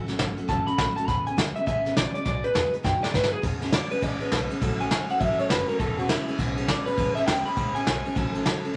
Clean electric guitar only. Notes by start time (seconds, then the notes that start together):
0.49 A5
0.67 B5
0.96 A5
1.07 B5
1.27 G#5
1.56 E5
1.67 E5
1.97 D5
2.14 D5
2.25 D5
2.44 B4
2.85 G5
3.03 D5
3.15 B4
3.33 G#4
3.74 D5
3.91 B4
4.03 D5
4.21 B4
4.81 G#5
5.11 F#5
5.20 E5
5.39 C#5
5.50 B4
5.68 A#4
5.80 A4
5.99 F#4
6.10 E4
6.68 D5
6.86 B4
7.15 E5
7.27 G5
7.46 B5
7.75 G#5